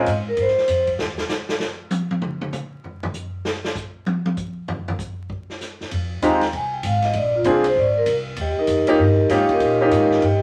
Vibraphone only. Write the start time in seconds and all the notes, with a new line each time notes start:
0.09 C#5
0.28 A#4
0.40 C5
6.25 A#5
6.43 G5
6.56 G#5
6.74 G5
6.86 F5
7.04 D#5
7.17 D5
7.36 F4
7.48 G#4
7.66 C5
7.79 D5
7.97 A#4
8.41 G4 C#5 D#5 G5
8.59 D#4 G4 A#4 D#5
8.90 D#4 G4 A#4 D#5
9.33 G4 C#5 D#5 G5
9.52 D#4 G4 A#4 D#5
9.83 D#4 G4 A#4 D#5
10.25 G4 C#5 D#5 G5